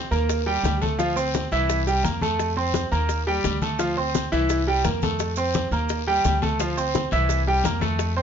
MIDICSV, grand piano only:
0, 0, Header, 1, 2, 480
1, 0, Start_track
1, 0, Tempo, 350058
1, 1364, Time_signature, 4, 2, 24, 8
1, 11271, End_track
2, 0, Start_track
2, 0, Title_t, "Grand piano"
2, 0, Program_c, 0, 0
2, 151, Note_on_c, 0, 58, 76
2, 153, Note_on_c, 0, 70, 78
2, 158, Note_on_c, 0, 82, 72
2, 550, Note_off_c, 0, 58, 0
2, 551, Note_off_c, 0, 70, 0
2, 554, Note_off_c, 0, 82, 0
2, 635, Note_on_c, 0, 55, 85
2, 642, Note_on_c, 0, 67, 86
2, 644, Note_on_c, 0, 79, 88
2, 1032, Note_off_c, 0, 55, 0
2, 1036, Note_off_c, 0, 67, 0
2, 1037, Note_off_c, 0, 79, 0
2, 1114, Note_on_c, 0, 57, 68
2, 1122, Note_on_c, 0, 69, 74
2, 1124, Note_on_c, 0, 81, 69
2, 1315, Note_off_c, 0, 57, 0
2, 1320, Note_off_c, 0, 69, 0
2, 1321, Note_off_c, 0, 81, 0
2, 1350, Note_on_c, 0, 53, 79
2, 1354, Note_on_c, 0, 65, 91
2, 1361, Note_on_c, 0, 77, 81
2, 1553, Note_off_c, 0, 53, 0
2, 1555, Note_off_c, 0, 65, 0
2, 1559, Note_off_c, 0, 77, 0
2, 1591, Note_on_c, 0, 60, 81
2, 1595, Note_on_c, 0, 72, 75
2, 1597, Note_on_c, 0, 84, 78
2, 1990, Note_off_c, 0, 60, 0
2, 1993, Note_off_c, 0, 72, 0
2, 1994, Note_off_c, 0, 84, 0
2, 2081, Note_on_c, 0, 52, 91
2, 2086, Note_on_c, 0, 64, 97
2, 2090, Note_on_c, 0, 76, 97
2, 2476, Note_off_c, 0, 52, 0
2, 2480, Note_off_c, 0, 64, 0
2, 2482, Note_off_c, 0, 76, 0
2, 2564, Note_on_c, 0, 55, 73
2, 2566, Note_on_c, 0, 67, 84
2, 2570, Note_on_c, 0, 79, 76
2, 2761, Note_off_c, 0, 55, 0
2, 2763, Note_off_c, 0, 67, 0
2, 2765, Note_off_c, 0, 79, 0
2, 2794, Note_on_c, 0, 58, 69
2, 2797, Note_on_c, 0, 70, 67
2, 2801, Note_on_c, 0, 82, 69
2, 2995, Note_off_c, 0, 58, 0
2, 2997, Note_off_c, 0, 70, 0
2, 3000, Note_off_c, 0, 82, 0
2, 3042, Note_on_c, 0, 57, 78
2, 3047, Note_on_c, 0, 69, 75
2, 3049, Note_on_c, 0, 81, 72
2, 3437, Note_off_c, 0, 57, 0
2, 3440, Note_off_c, 0, 69, 0
2, 3441, Note_off_c, 0, 81, 0
2, 3519, Note_on_c, 0, 60, 78
2, 3524, Note_on_c, 0, 72, 72
2, 3525, Note_on_c, 0, 84, 78
2, 3915, Note_off_c, 0, 60, 0
2, 3918, Note_off_c, 0, 72, 0
2, 3919, Note_off_c, 0, 84, 0
2, 3997, Note_on_c, 0, 58, 82
2, 3998, Note_on_c, 0, 70, 81
2, 4004, Note_on_c, 0, 82, 73
2, 4394, Note_off_c, 0, 58, 0
2, 4395, Note_off_c, 0, 70, 0
2, 4398, Note_off_c, 0, 82, 0
2, 4484, Note_on_c, 0, 55, 91
2, 4488, Note_on_c, 0, 67, 91
2, 4496, Note_on_c, 0, 79, 98
2, 4878, Note_off_c, 0, 55, 0
2, 4881, Note_off_c, 0, 67, 0
2, 4885, Note_off_c, 0, 79, 0
2, 4965, Note_on_c, 0, 57, 67
2, 4966, Note_on_c, 0, 69, 73
2, 4975, Note_on_c, 0, 81, 71
2, 5162, Note_off_c, 0, 57, 0
2, 5162, Note_off_c, 0, 69, 0
2, 5168, Note_off_c, 0, 81, 0
2, 5194, Note_on_c, 0, 53, 78
2, 5199, Note_on_c, 0, 77, 83
2, 5201, Note_on_c, 0, 65, 86
2, 5396, Note_off_c, 0, 53, 0
2, 5399, Note_off_c, 0, 77, 0
2, 5400, Note_off_c, 0, 65, 0
2, 5441, Note_on_c, 0, 60, 73
2, 5445, Note_on_c, 0, 72, 76
2, 5452, Note_on_c, 0, 84, 78
2, 5836, Note_off_c, 0, 60, 0
2, 5839, Note_off_c, 0, 72, 0
2, 5843, Note_off_c, 0, 84, 0
2, 5923, Note_on_c, 0, 52, 93
2, 5925, Note_on_c, 0, 64, 93
2, 5928, Note_on_c, 0, 76, 88
2, 6317, Note_off_c, 0, 52, 0
2, 6318, Note_off_c, 0, 64, 0
2, 6320, Note_off_c, 0, 76, 0
2, 6410, Note_on_c, 0, 55, 80
2, 6415, Note_on_c, 0, 67, 84
2, 6418, Note_on_c, 0, 79, 84
2, 6604, Note_off_c, 0, 55, 0
2, 6608, Note_off_c, 0, 67, 0
2, 6609, Note_off_c, 0, 79, 0
2, 6640, Note_on_c, 0, 58, 66
2, 6650, Note_on_c, 0, 70, 66
2, 6650, Note_on_c, 0, 82, 64
2, 6838, Note_off_c, 0, 58, 0
2, 6845, Note_off_c, 0, 70, 0
2, 6845, Note_off_c, 0, 82, 0
2, 6895, Note_on_c, 0, 57, 65
2, 6898, Note_on_c, 0, 69, 71
2, 6898, Note_on_c, 0, 81, 72
2, 7284, Note_off_c, 0, 57, 0
2, 7286, Note_off_c, 0, 69, 0
2, 7286, Note_off_c, 0, 81, 0
2, 7365, Note_on_c, 0, 60, 83
2, 7370, Note_on_c, 0, 72, 73
2, 7372, Note_on_c, 0, 84, 77
2, 7758, Note_off_c, 0, 60, 0
2, 7761, Note_off_c, 0, 72, 0
2, 7762, Note_off_c, 0, 84, 0
2, 7844, Note_on_c, 0, 58, 80
2, 7844, Note_on_c, 0, 70, 72
2, 7854, Note_on_c, 0, 82, 75
2, 8237, Note_off_c, 0, 58, 0
2, 8237, Note_off_c, 0, 70, 0
2, 8243, Note_off_c, 0, 82, 0
2, 8328, Note_on_c, 0, 55, 88
2, 8330, Note_on_c, 0, 79, 93
2, 8333, Note_on_c, 0, 67, 92
2, 8719, Note_off_c, 0, 55, 0
2, 8721, Note_off_c, 0, 79, 0
2, 8722, Note_off_c, 0, 67, 0
2, 8802, Note_on_c, 0, 57, 75
2, 8811, Note_on_c, 0, 69, 76
2, 8812, Note_on_c, 0, 81, 78
2, 8999, Note_off_c, 0, 57, 0
2, 9004, Note_off_c, 0, 69, 0
2, 9005, Note_off_c, 0, 81, 0
2, 9044, Note_on_c, 0, 53, 80
2, 9053, Note_on_c, 0, 65, 78
2, 9055, Note_on_c, 0, 77, 76
2, 9240, Note_off_c, 0, 53, 0
2, 9245, Note_off_c, 0, 65, 0
2, 9247, Note_off_c, 0, 77, 0
2, 9285, Note_on_c, 0, 60, 70
2, 9288, Note_on_c, 0, 72, 74
2, 9291, Note_on_c, 0, 84, 76
2, 9677, Note_off_c, 0, 60, 0
2, 9679, Note_off_c, 0, 72, 0
2, 9681, Note_off_c, 0, 84, 0
2, 9759, Note_on_c, 0, 52, 90
2, 9768, Note_on_c, 0, 64, 91
2, 9771, Note_on_c, 0, 76, 93
2, 10153, Note_off_c, 0, 52, 0
2, 10158, Note_off_c, 0, 64, 0
2, 10161, Note_off_c, 0, 76, 0
2, 10250, Note_on_c, 0, 55, 77
2, 10251, Note_on_c, 0, 67, 82
2, 10257, Note_on_c, 0, 79, 85
2, 10443, Note_off_c, 0, 55, 0
2, 10444, Note_off_c, 0, 67, 0
2, 10447, Note_off_c, 0, 79, 0
2, 10481, Note_on_c, 0, 58, 72
2, 10487, Note_on_c, 0, 70, 67
2, 10489, Note_on_c, 0, 82, 68
2, 10678, Note_off_c, 0, 58, 0
2, 10681, Note_off_c, 0, 70, 0
2, 10682, Note_off_c, 0, 82, 0
2, 10712, Note_on_c, 0, 57, 77
2, 10718, Note_on_c, 0, 69, 75
2, 10720, Note_on_c, 0, 81, 77
2, 11109, Note_off_c, 0, 57, 0
2, 11112, Note_off_c, 0, 69, 0
2, 11113, Note_off_c, 0, 81, 0
2, 11197, Note_on_c, 0, 60, 71
2, 11197, Note_on_c, 0, 72, 72
2, 11203, Note_on_c, 0, 84, 80
2, 11271, Note_off_c, 0, 60, 0
2, 11271, Note_off_c, 0, 72, 0
2, 11271, Note_off_c, 0, 84, 0
2, 11271, End_track
0, 0, End_of_file